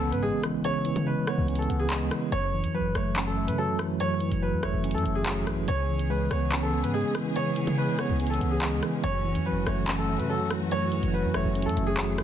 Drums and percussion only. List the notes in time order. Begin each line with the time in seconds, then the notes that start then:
0.12 closed hi-hat
0.43 cross-stick, closed hi-hat
0.64 closed hi-hat
0.85 closed hi-hat
0.96 closed hi-hat
1.27 cross-stick
1.48 closed hi-hat
1.55 closed hi-hat
1.62 closed hi-hat
1.70 closed hi-hat
1.90 clap
2.11 cross-stick, closed hi-hat
2.32 closed hi-hat
2.64 closed hi-hat
2.95 cross-stick, closed hi-hat
3.16 clap, closed hi-hat
3.48 closed hi-hat
3.79 cross-stick, closed hi-hat
4.00 closed hi-hat
4.20 closed hi-hat
4.32 closed hi-hat
4.63 cross-stick
4.84 closed hi-hat
4.91 closed hi-hat
4.98 closed hi-hat
5.06 closed hi-hat
5.26 clap
5.47 cross-stick, closed hi-hat
5.68 closed hi-hat
5.99 closed hi-hat
6.31 cross-stick, closed hi-hat
6.52 clap, closed hi-hat
6.84 closed hi-hat
7.15 cross-stick, closed hi-hat
7.36 closed hi-hat
7.56 closed hi-hat
7.67 closed hi-hat
7.99 cross-stick
8.20 closed hi-hat
8.27 closed hi-hat
8.34 closed hi-hat
8.41 closed hi-hat
8.62 clap
8.83 cross-stick, closed hi-hat
9.04 closed hi-hat
9.35 closed hi-hat
9.66 cross-stick, closed hi-hat
9.87 clap, closed hi-hat
10.19 closed hi-hat
10.51 cross-stick, closed hi-hat
10.71 closed hi-hat
10.92 closed hi-hat
11.03 closed hi-hat
11.34 cross-stick
11.55 closed hi-hat
11.62 closed hi-hat
11.69 closed hi-hat
11.77 closed hi-hat
11.97 clap
12.18 cross-stick, closed hi-hat